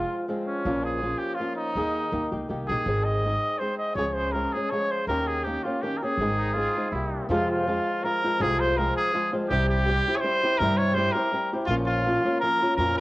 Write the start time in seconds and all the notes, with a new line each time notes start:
Already playing: F3 G#3 C4 F4
0.28 F3 G#3 C4 F4
0.46 C#4
0.65 A#1 A#2 F3 A#3 C#4 F4
0.84 G#4
1.02 F3 A#3 C#4 F4
1.18 G4
1.34 F4
1.40 F3 A#3 C#4 F4
1.56 D#4
1.75 D#2 D#3 A#3 D#4 G#4
2.12 D#2 D#3 A#3 D#4 G4
2.32 C#2 A#3 D#4 G4
2.49 C2 D#3 A#3 D#4 G4
2.67 A#1 G4 G#4
2.72 A#3 D#4
2.86 G#1 G#2 D#3 G#3 C4 D#4 G#4
3.04 D#5
3.25 G#3 C4 D#4 G#4
3.59 G#3 C4 D#4 G#4 C5
3.78 D#5
3.95 C#2 C#3 F3 G#3 C#4 G#4 C#5
4.14 C5
4.32 F3 G#3 C#4 G#4 A#4
4.53 C#4 G#4
4.57 G#3
4.70 F3 G#3 C#4 G#4 C#5
4.91 C5
5.07 D#2 D#3 A#3 C#4 G4 A#4
5.27 G#4
5.44 D#3 A#3 C#4 G4
5.63 A#3 C#4 F4 G4
5.82 D#3 A#3 C#4 G4
5.97 A#4
6.02 A#3 C#4 G4 G#4
6.17 G#1 G#2 D#3 G#3 C4
6.22 D#4 G#4
6.38 D#4
6.54 G#3 C4 F4
6.58 D#4 G#4
6.76 G#3 C4 D#4 G#4
6.91 C2 G3 A#3 E4
6.95 E4 G4
7.29 F2 C3 F3 G#3 C4 F4
7.50 F4
7.68 F3 G#3 C4 F4
8.04 F3 G#3 C4 F4 A#4
8.24 F3 G#3 C4 F4
8.40 C2 F2 C3 F3 G#3 C4 F4 G#4
8.59 C5
8.77 F3 G#3 C4 F4 A#4
8.96 G#4
9.13 F3 G#3 C4 F4
9.33 F3 G#3 C4 F4
9.49 C2 C3 G3 C4 E4 G4
9.68 G4
9.87 G3 C4 E4 G4
10.08 C4 E4 G4
10.16 C5 C#5
10.23 G3 C4 E4 G4
10.43 C4 E4 G4
10.58 G2 C3 G3 C4 E4 G4 A#4
10.77 C#5
10.94 G3 C4 E4 G4 C5
11.12 G4 A#4
11.16 C4 E4
11.32 G3 C4 E4 G4
11.53 C4 E4 G4
11.65 A#1 F4
11.70 A#2 F3 A#3 C#4 F4
11.85 F4
12.06 F3 A#3 C#4 F4
12.25 A#3 C#4 F4
12.40 F3 A#3 C#4 F4 A#4
12.62 A#3 C#4 F4
12.76 F2 A#2 F3 A#3 C#4 F4 A#4